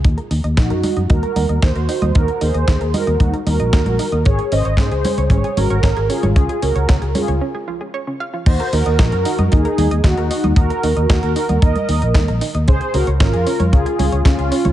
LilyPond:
<<
  \new Staff \with { instrumentName = "Analog polysynth" } { \time 4/4 \key ees \dorian \tempo 4 = 114 r4 <ees' ges'>4 <ges' bes'>4 <ges' c''>4 | <ges' bes'>8 <aes' c''>4 <ges' bes'>8 <ees' ges'>8 <ges' bes'>4. | <aes' des''>8 <c'' ees''>8 <aes' c''>4 <aes' des''>8 <ges' bes'>4 <f' aes'>8 | <f' aes'>8 <ges' bes'>4 <f' aes'>8 r2 |
<ges' c''>8 <ges' bes'>8 <ges' bes'>4 <ees' aes'>4 <ees' ges'>4 | <ges' bes'>4 <ges' bes'>4 <bes' ees''>4. r8 | <aes' c''>8 <ges' bes'>8 <f' bes'>4 <f' aes'>4 <des' f'>4 | }
  \new Staff \with { instrumentName = "Synth arpeggio sound" } { \time 4/4 \key ees \dorian ees'16 bes'16 ees'16 ees''16 ees'16 bes'16 ees'16 ees''16 ees'16 bes'16 ees'16 ees''16 ees'16 bes'16 ees'16 ees''16 | ees'16 bes'16 ees'16 ees''16 ees'16 bes'16 ees'16 ees''16 ees'16 bes'16 ees'16 ees''16 ees'16 bes'16 ees'16 ees''16 | des'16 aes'16 des'16 des''16 des'16 aes'16 des'16 des''16 des'16 aes'16 des'16 des''16 des'16 aes'16 des'16 des''16 | des'16 aes'16 des'16 des''16 des'16 aes'16 des'16 des''16 des'16 aes'16 f'16 aes'16 des''16 des'16 f''16 f'16 |
ees'16 bes'16 ees'16 ees''16 ees'16 bes'16 ees'16 ees''16 ees'16 bes'16 ees'16 ees''16 ees'16 bes'16 ees'16 ees''16 | ees'16 bes'16 ees'16 ees''16 ees'16 bes'16 ees'16 ees''16 ees'16 bes'16 ees'16 ees''16 ees'16 bes'16 ees'16 ees''16 | des'16 aes'16 des'16 des''16 des'16 aes'16 des'16 des''16 des'16 aes'16 des'16 des''16 des'16 aes'16 des'16 des''16 | }
  \new Staff \with { instrumentName = "Fingered electric bass" } { \clef bass \time 4/4 \key ees \dorian ees,16 r16 ees,16 ees,16 bes,,16 ges,16 r16 ges,16 ees,16 r16 ees,16 ees,16 ees,16 ees,16 r16 ees,16 | ees,16 r16 ees,16 ees,16 ees,16 ees,16 r16 ees,16 ees,16 r16 ees,16 bes,,16 ees,16 bes,,16 r16 ees,16 | aes,,16 r16 aes,,16 aes,,16 aes,16 des,16 r16 des,16 aes,,16 r16 aes,,16 aes,,16 aes,,16 aes,,16 r16 aes,,16 | des,16 r16 des,16 des,16 des,16 des,16 r16 des,16 r2 |
ees,16 r16 ees,16 ees,16 bes,,16 ges,16 r16 ges,16 ees,16 r16 ees,16 ees,16 ees,16 ees,16 r16 ees,16 | ees,16 r16 ees,16 ees,16 r16 ees,16 r16 ees,16 ees,16 r16 ees,16 bes,,16 ees,16 bes,,16 r16 ees,16 | des,16 r16 des,16 des,16 aes,,16 f,16 r16 f,16 des,16 r16 des,16 des,16 des,16 des,16 r16 des,16 | }
  \new DrumStaff \with { instrumentName = "Drums" } \drummode { \time 4/4 <hh bd>16 hh16 hho16 hh16 <hh bd sn>16 hh16 <cgho hho>16 hh16 <cgho hh bd>16 hh16 <cgho hho>16 hh16 <hh bd sn>16 hh16 hho16 <cgho hh>16 | <hh bd>16 hh16 hho16 hh16 <hh bd sn>16 hh16 <cgho hho>16 hh16 <cgho hh bd>16 hh16 <cgho hho>16 hh16 <hh bd sn>16 <cgho hh>16 hho16 hh16 | <hh bd>16 hh16 hho16 hh16 <hh bd sn>16 hh16 <cgho hho>16 hh16 <cgho hh bd>16 hh16 <cgho hho>16 hh16 <hh bd sn>16 hh16 hho16 <cgho hh>16 | <hh bd>16 hh16 hho16 hh16 <hh bd sn>16 hh16 <cgho hho>16 hh16 r4 r4 |
<cymc hh bd>16 hh16 hho16 hh16 <hh bd sn>16 hh16 hho16 <cgho hh>16 <hh bd>16 hh16 <cgho hho>16 hh16 <hh bd sn>16 hh16 hho16 <cgho hh>16 | <hh bd>16 hh16 hho16 hh16 <hh bd sn>16 hh16 hho16 <cgho hh>16 <hh bd>16 <cgho hh>16 hho16 hh16 <cgho hh bd sn>16 hh16 hho16 hh16 | <hh bd>16 hh16 hho16 hh16 <hh bd sn>16 hh16 hho16 <cgho hh>16 <hh bd>16 hh16 <cgho hho>16 hh16 <hh bd sn>16 hh16 hho16 <cgho hh>16 | }
>>